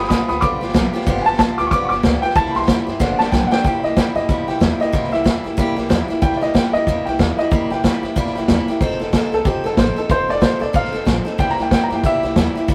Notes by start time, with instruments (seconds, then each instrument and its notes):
Already playing: steel-string acoustic guitar G4
0.00 steel-string acoustic guitar F3 F4, snare
0.08 upright bass B1, steel-string acoustic guitar F3 B3 F4, upright piano B5 D#6, kick, snare, hi-hat pedal
0.13 steel-string acoustic guitar G4
0.28 upright bass D2, steel-string acoustic guitar B3 F4 G4, upright piano B5 D#6, snare
0.32 steel-string acoustic guitar F3
0.40 upright bass B1, steel-string acoustic guitar G2 D3 F3 B3 F4 G4, upright piano B5 D6, kick, snare
0.61 upright bass G1, steel-string acoustic guitar F3 B3 F4 G4, snare
0.68 snare
0.74 upright bass B1, steel-string acoustic guitar F3 B3 F4 G4, kick, snare, hi-hat pedal
0.93 steel-string acoustic guitar F3 B3 F4 G4, muted upright bass stroke, snare
1.01 snare
1.06 upright bass G1, steel-string acoustic guitar G2 D3 F3 B3 F4 G4, kick, snare
1.17 snare
1.21 upright piano G#5
1.26 upright bass G1, steel-string acoustic guitar F3 B3 F4 G4, upright piano A5, snare
1.32 snare
1.38 upright bass B1, steel-string acoustic guitar F3 B3 F4 G4, upright piano A5, kick, snare, hi-hat pedal
1.58 upright bass D2, steel-string acoustic guitar F3 B3 F4 G4, upright piano D6, snare
1.67 upright piano C#6
1.71 upright bass B1, steel-string acoustic guitar G2 D3 F3 B3 F4 G4, upright piano D6, kick, snare
1.85 upright piano C#6 D6
1.90 upright bass G1, steel-string acoustic guitar F3 B3 F4 G4, snare
2.03 upright bass D2, steel-string acoustic guitar F3 B3 F4 G4, kick, snare, hi-hat pedal
2.22 steel-string acoustic guitar F3 B3 F4 G4, upright piano G5, muted upright bass stroke, snare
2.29 snare
2.35 upright bass C2, steel-string acoustic guitar C3 G3 A#3 E4 G4, upright piano A5, kick, snare
2.45 snare
2.51 steel-string acoustic guitar G4, upright piano B5, snare
2.56 upright bass C2, steel-string acoustic guitar A#3 E4, upright piano C6
2.61 snare
2.67 upright bass E2, steel-string acoustic guitar G3 A#3 E4 G4, kick, snare, hi-hat pedal
2.87 upright bass G2, steel-string acoustic guitar A#3 E4 G4, snare
3.00 upright bass G1, steel-string acoustic guitar G2 D3 F3 B3 D4 G4, kick, snare
3.19 upright bass G1, steel-string acoustic guitar F3 B3 D4 G4, upright piano A5, snare
3.32 upright bass B1, steel-string acoustic guitar F3 B3 D4 G4, upright piano G5, kick, snare, hi-hat pedal
3.47 upright piano F#5
3.51 steel-string acoustic guitar F3 B3 D4 G4, upright piano G5, snare
3.64 upright bass C2, steel-string acoustic guitar C3 G3 A#3 E4 G4, upright piano G5, kick, snare
3.80 steel-string acoustic guitar G4, upright piano D5
3.84 upright bass C2, steel-string acoustic guitar A#3 E4, upright piano D#5, snare
3.96 upright bass E2, steel-string acoustic guitar G3 A#3 E4 G4, upright piano G5, kick, snare, hi-hat pedal
4.15 upright bass G2, steel-string acoustic guitar A#3 E4 G4, upright piano D#5, snare
4.29 upright bass E2, steel-string acoustic guitar C3 G3 A#3 E4 G4, kick, snare
4.48 upright bass C2, steel-string acoustic guitar A#3 E4 G4, upright piano G5, snare
4.60 upright bass E2, steel-string acoustic guitar G3 A#3 E4 G4, kick, snare, hi-hat pedal
4.80 steel-string acoustic guitar A#3 E4 G4, upright piano D#5, muted upright bass stroke, snare
4.92 upright bass C2, steel-string acoustic guitar C3 G3 A#3 E4 G4, kick, snare
5.03 snare
5.12 upright bass C2, steel-string acoustic guitar A#3 E4 G4, upright piano E5, snare
5.24 upright bass E2, steel-string acoustic guitar G3 A#3 E4 G4, kick, snare, hi-hat pedal
5.44 upright bass G2, steel-string acoustic guitar A#3 E4 G4, snare
5.57 upright bass E2, steel-string acoustic guitar C3 G3 A#3 E4 G4, kick, snare
5.76 upright bass C2, steel-string acoustic guitar A#3 E4 G4, snare
5.89 upright bass E2, steel-string acoustic guitar G3 A#3 E4 G4, kick, snare, hi-hat pedal
6.08 steel-string acoustic guitar A#3 E4 G4, muted upright bass stroke, snare
6.22 upright bass C2, steel-string acoustic guitar C3 G3 A#3 E4 G4, upright piano G5, kick, snare
6.32 snare
6.37 upright piano D5
6.41 upright bass C2, steel-string acoustic guitar A#3 E4 G4, upright piano D#5, snare
6.54 upright bass E2, steel-string acoustic guitar G3 A#3 E4 G4, upright piano G5, kick, snare, hi-hat pedal
6.73 upright bass G2, steel-string acoustic guitar A#3 E4 G4, upright piano D#5, snare
6.87 upright bass E2, steel-string acoustic guitar C3 G3 A#3 E4 G4, kick, snare
7.05 upright bass C2, steel-string acoustic guitar E4 G4, upright piano G5, snare
7.10 steel-string acoustic guitar A#3
7.19 upright bass E2, steel-string acoustic guitar G3 A#3 E4 G4, kick, snare, hi-hat pedal
7.38 steel-string acoustic guitar A#3 E4 G4, upright piano D#5, muted upright bass stroke, snare
7.51 upright bass C2, steel-string acoustic guitar C3 G3 A#3 E4 G4, kick, snare
7.70 upright bass C2, steel-string acoustic guitar A#3 E4 G4, upright piano G5, snare
7.83 steel-string acoustic guitar G3 A#3 E4 G4, kick, snare, hi-hat pedal
8.03 upright bass G2, steel-string acoustic guitar A#3 E4 G4, snare
8.16 upright bass E2, steel-string acoustic guitar C3 G3 A#3 E4 G4, kick, snare
8.26 snare
8.35 upright bass C2, steel-string acoustic guitar A#3 E4 G4, snare
8.48 upright bass E2, steel-string acoustic guitar G3 A#3 E4 G4, kick, snare, hi-hat pedal
8.67 steel-string acoustic guitar E4 G4, muted upright bass stroke, snare
8.71 steel-string acoustic guitar A#3
8.80 upright bass F1, steel-string acoustic guitar F3 C4 D#4 A4, kick, snare
8.90 snare
8.99 upright bass F1, steel-string acoustic guitar C4 D#4 A4, snare
9.13 upright bass A1, steel-string acoustic guitar F3 C4 D#4 A4, kick, snare, hi-hat pedal
9.32 upright bass C2, steel-string acoustic guitar C4 D#4 A4, upright piano A4, snare
9.45 upright bass A1, steel-string acoustic guitar F3 C4 D#4 A4, upright piano G4, kick, snare
9.64 upright bass F1, steel-string acoustic guitar C4 D#4 A4, upright piano A4, snare
9.77 upright bass A1, steel-string acoustic guitar F3 C4 D#4 A4, upright piano C5, kick, snare, hi-hat pedal
9.96 steel-string acoustic guitar C4 D#4 A4, upright piano A4, muted upright bass stroke, snare
10.09 upright bass F1, steel-string acoustic guitar F3 C4 D#4 A4, upright piano C5, kick, snare
10.28 upright bass F1, steel-string acoustic guitar C4 D#4 A4, upright piano D5, snare
10.41 upright bass A1, steel-string acoustic guitar F3 C4 D#4 A4, upright piano C5, kick, snare, hi-hat pedal
10.60 upright bass C2, steel-string acoustic guitar C4 D#4 A4, upright piano D5, snare
10.73 upright bass A1, steel-string acoustic guitar F3 C4 D#4 A4, upright piano F5, kick, snare
10.84 snare
10.93 upright bass F1, steel-string acoustic guitar C4 D#4 A4, snare
11.05 upright bass A#1, steel-string acoustic guitar F3 C4 D#4 A4, kick, snare, hi-hat pedal
11.25 steel-string acoustic guitar C4 D#4 A4, muted upright bass stroke, snare
11.38 upright bass C2, steel-string acoustic guitar C3 G3 A#3 E4 G4, upright piano G5, kick, snare
11.49 upright piano A#5, snare
11.58 upright bass C2, steel-string acoustic guitar A#3 E4 G4, snare
11.62 upright piano G5
11.71 steel-string acoustic guitar G3 A#3 E4 G4, upright piano G5, kick, snare, hi-hat pedal
11.84 upright piano A#5
11.90 upright bass G2, steel-string acoustic guitar A#3 E4 G4, snare
11.95 upright piano G5
12.03 upright bass E2, steel-string acoustic guitar C3 G3 A#3 E4 G4, upright piano E5, kick, snare
12.23 upright bass C2, steel-string acoustic guitar A#3 E4 G4, snare
12.36 upright bass E2, steel-string acoustic guitar G3 A#3 E4 G4, kick, snare, hi-hat pedal
12.55 steel-string acoustic guitar A#3 E4 G4, muted upright bass stroke, snare
12.68 upright bass C2, steel-string acoustic guitar C3 G3 A#3 E4 G4, kick, snare